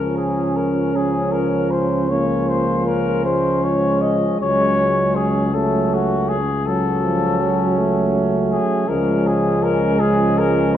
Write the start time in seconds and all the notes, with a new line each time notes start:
Already playing: C#2 F3 C#4 A#4
0.17 G#4
0.56 A#4
0.95 F3 C#4 G#4
1.32 A#4
1.71 C5
2.10 F3 A#3 C#4 C#5
2.48 C5
2.86 A#4
3.25 G#3 C5
3.63 C#5
4.02 D#5
4.40 C#2 F#3 C#4 C#5
5.16 G#4
5.53 F#3 A3 C#4 A4
5.94 F#4
6.29 G#4
6.66 F#3 C#4 A4
7.04 F3
7.41 F#3
7.78 A3
8.52 G#4
8.88 C#2 F3 G#3 C#4 A#4
9.27 G#4
9.63 A#4
10.00 F3 C#4 G#4
10.39 A#4